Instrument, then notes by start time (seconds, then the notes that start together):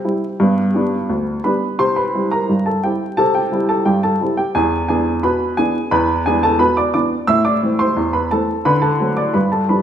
upright piano
Already playing: G4 G5
0.05 G3 C4 E4
0.40 G2 B3
0.74 G3 B3 D4
1.09 D2
1.44 G3 B3 D4 B4 B5
1.79 C3 C5 C6
1.96 B4 B5
2.15 G3 C4 E4
2.31 A#4 A#5
2.49 G2
2.66 A4 A5
2.83 G3 C4 E4 G4 G5
3.17 C3 A4 A5
3.35 G4 G5
3.52 G3 C4 E4
3.69 A4 A5
3.85 G2 G4 G5
4.03 A4 A5
4.21 G3 C4 E4
4.37 G4 G5
4.55 E2 G#4 G#5
4.88 E3 B3 D4 G#4 G#5
5.23 B2 B4 B5
5.57 E3 B3 D4 G#4 G#5
5.91 E2 B4 B5
6.26 E3 B3 D4 G#4 G#5
6.43 A4 A5
6.59 B2 B4 B5
6.77 D5 D6
6.94 E3 B3 D4 D5 D6
7.27 A2 E5 E6
7.45 D5 D6
7.62 E3 A3 C4
7.79 C5 C6
7.97 E2
8.13 B4 B5
8.31 E3 A3 C4 A4 A5
8.65 D3 B4 B5
8.82 A4 A5
9.00 F#3 A3 C4
9.17 D5 D6
9.34 G2 B4 B5
9.52 A4 A5
9.69 F3 G3 D4 B4 B5